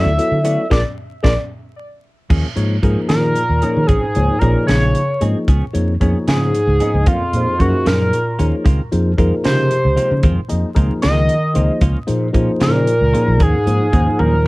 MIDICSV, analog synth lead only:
0, 0, Header, 1, 2, 480
1, 0, Start_track
1, 0, Tempo, 528634
1, 655, Time_signature, 6, 3, 24, 8
1, 13143, End_track
2, 0, Start_track
2, 0, Title_t, "Analog synth lead"
2, 0, Program_c, 0, 81
2, 0, Note_on_c, 0, 76, 88
2, 613, Note_off_c, 0, 76, 0
2, 651, Note_on_c, 0, 74, 89
2, 729, Note_off_c, 0, 74, 0
2, 1121, Note_on_c, 0, 74, 92
2, 1203, Note_off_c, 0, 74, 0
2, 2801, Note_on_c, 0, 70, 83
2, 3469, Note_off_c, 0, 70, 0
2, 3469, Note_on_c, 0, 70, 65
2, 3513, Note_on_c, 0, 68, 84
2, 3526, Note_off_c, 0, 70, 0
2, 3985, Note_on_c, 0, 70, 86
2, 3999, Note_off_c, 0, 68, 0
2, 4234, Note_off_c, 0, 70, 0
2, 4240, Note_on_c, 0, 73, 89
2, 4750, Note_off_c, 0, 73, 0
2, 5711, Note_on_c, 0, 68, 78
2, 6424, Note_on_c, 0, 65, 87
2, 6438, Note_off_c, 0, 68, 0
2, 6906, Note_on_c, 0, 66, 85
2, 6919, Note_off_c, 0, 65, 0
2, 7141, Note_on_c, 0, 70, 89
2, 7155, Note_off_c, 0, 66, 0
2, 7678, Note_off_c, 0, 70, 0
2, 8580, Note_on_c, 0, 72, 101
2, 9261, Note_off_c, 0, 72, 0
2, 10006, Note_on_c, 0, 75, 101
2, 10694, Note_off_c, 0, 75, 0
2, 11461, Note_on_c, 0, 70, 98
2, 12186, Note_on_c, 0, 68, 100
2, 12200, Note_off_c, 0, 70, 0
2, 12883, Note_on_c, 0, 70, 82
2, 12897, Note_off_c, 0, 68, 0
2, 13143, Note_off_c, 0, 70, 0
2, 13143, End_track
0, 0, End_of_file